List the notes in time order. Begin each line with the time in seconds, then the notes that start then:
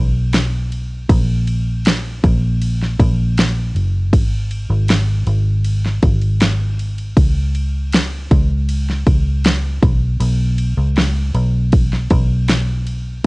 Already playing: B1
0.33 snare, ride
0.72 ride
1.09 A#1, kick, ride
1.47 ride
1.85 snare, ride
2.24 A#1, kick, ride
2.62 ride
2.83 snare
2.99 A#1, kick, ride
3.37 snare, ride
3.75 F#1, ride
4.13 G#1, kick, ride
4.51 ride
4.70 G#1
4.88 snare, ride
5.27 G#1, ride
5.64 ride
5.86 snare
6.03 G#1, kick, ride
6.22 ride
6.40 snare, ride
6.79 ride
6.98 ride
7.17 C#2, kick, ride
7.55 ride
7.92 snare, ride
8.31 C#2, kick, ride
8.69 ride
8.90 snare
9.07 C#2, kick, ride
9.44 snare, ride
9.83 B1, kick, ride
10.20 B1, ride
10.58 ride
10.77 C#2
10.96 snare, ride
11.34 B1, ride
11.72 kick, ride
11.93 snare
12.10 B1, kick, ride
12.48 snare, ride
12.87 ride